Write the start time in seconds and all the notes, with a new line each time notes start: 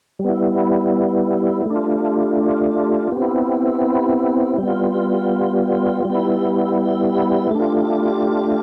0.19 G3
0.24 B3 G4
0.29 E4
1.65 A3
1.70 D4
1.75 F4
3.12 B3
3.17 C4
3.22 E4
4.58 G3
4.63 B3
4.68 F4
6.05 G3
6.10 B3
6.15 E4
7.50 A3
7.55 D4
7.60 F4